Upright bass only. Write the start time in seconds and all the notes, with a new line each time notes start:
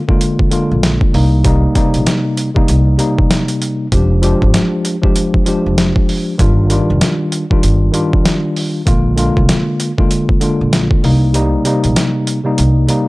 0.71 A#1
1.14 C2
1.95 A#1
2.69 C2
3.92 F1
4.42 G#1
5.66 F1
6.40 G1
6.90 F1
7.64 G1
8.87 A#1
9.37 C2
10.61 A#1
11.04 C2
11.85 A#1
12.59 C2